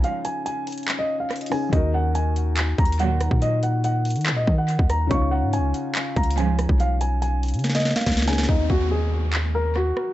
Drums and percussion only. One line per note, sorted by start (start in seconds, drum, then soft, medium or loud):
0.04 closed hi-hat medium
0.25 closed hi-hat medium
0.46 closed hi-hat medium
0.67 closed hi-hat medium
0.67 open hi-hat medium
0.72 closed hi-hat medium
0.78 closed hi-hat medium
0.83 closed hi-hat soft
0.88 clap loud
0.88 closed hi-hat medium
1.30 cross-stick medium
1.30 closed hi-hat soft
1.36 closed hi-hat medium
1.41 closed hi-hat medium
1.46 closed hi-hat medium
1.51 cross-stick medium
1.51 open hi-hat medium
1.73 kick loud
1.73 closed hi-hat medium
2.15 closed hi-hat medium
2.36 closed hi-hat medium
2.57 clap loud
2.57 closed hi-hat medium
2.78 kick loud
2.78 closed hi-hat soft
2.85 closed hi-hat medium
2.92 closed hi-hat medium
2.99 closed hi-hat medium
3.21 cross-stick medium
3.21 closed hi-hat medium
3.31 kick loud
3.42 closed hi-hat medium
3.63 closed hi-hat medium
3.84 closed hi-hat medium
4.05 closed hi-hat medium
4.05 open hi-hat medium
4.10 closed hi-hat medium
4.16 closed hi-hat medium
4.21 closed hi-hat soft
4.26 clap loud
4.26 closed hi-hat medium
4.47 kick loud
4.68 closed hi-hat medium
4.79 kick loud
4.90 cross-stick medium
4.90 closed hi-hat medium
5.11 kick loud
5.11 closed hi-hat medium
5.53 closed hi-hat medium
5.74 closed hi-hat medium
5.95 clap loud
5.95 closed hi-hat medium
6.16 kick loud
6.16 closed hi-hat soft
6.23 closed hi-hat medium
6.30 closed hi-hat medium
6.37 closed hi-hat medium
6.59 cross-stick medium
6.59 closed hi-hat medium
6.69 kick loud
6.80 closed hi-hat medium
7.01 closed hi-hat medium
7.22 closed hi-hat medium
7.43 closed hi-hat medium
7.43 open hi-hat medium
7.48 closed hi-hat medium
7.54 closed hi-hat medium
7.59 closed hi-hat soft
7.64 snare medium
7.64 closed hi-hat medium
7.70 snare medium
7.75 snare medium
7.80 snare medium
7.85 snare medium
7.91 snare medium
7.96 snare medium
8.01 snare medium
8.06 kick loud
8.06 snare medium
8.06 closed hi-hat soft
8.12 snare medium
8.12 closed hi-hat medium
8.17 snare loud
8.17 closed hi-hat medium
8.22 snare medium
8.22 closed hi-hat medium
8.28 snare loud
8.28 open hi-hat medium
8.33 snare medium
8.38 snare loud
8.43 snare loud
8.49 kick loud
8.70 kick medium
9.33 clap loud
9.76 cross-stick medium
9.97 cross-stick medium